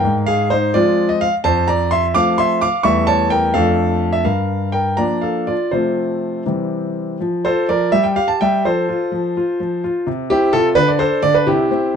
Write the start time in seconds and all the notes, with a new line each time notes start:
Already playing: A#4 G5
0.04 G#2
0.26 G#4 F5
0.50 D#4 C5
0.74 F3 G#3 C4 F4 D5
1.09 D#5
1.21 F5
1.44 F2 C5 A5
1.68 D5 A#5
1.91 E5 C6
2.14 F3 A3 C4 F5 D6
2.38 E5 C6
2.61 F5 D6
2.83 E2 G3 A3 E4 E5 C#6
3.07 C#5 A5
3.30 A#4 G5
3.54 F2 F3 A3 D4 A4 F5
4.13 E5
4.25 G2 A#4 F5
4.72 A#4 G5
4.97 F3 A#3 D4 D5 A#5
5.21 A4 F5
5.47 F4 D5
5.71 C3 F3 A3 C4 F4 C5
6.46 C3 E3 G3 C4
7.21 F3
7.45 F4 A4 C5
7.69 F3 A#4 D5
7.92 G3 E5
8.04 G5
8.16 G4 F5
8.28 A5
8.41 G3 E5 G5
8.65 F3 A4 C5
8.89 F4
9.12 F3
9.37 F4
9.60 F3
9.84 F4
10.07 C3
10.30 C4 E4 G4
10.53 C3 F4 A4
10.75 D3 B4
10.88 D5
10.99 D4 A4 C5
11.23 D3 D5
11.34 B4
11.47 C3 E4 G4
11.71 C4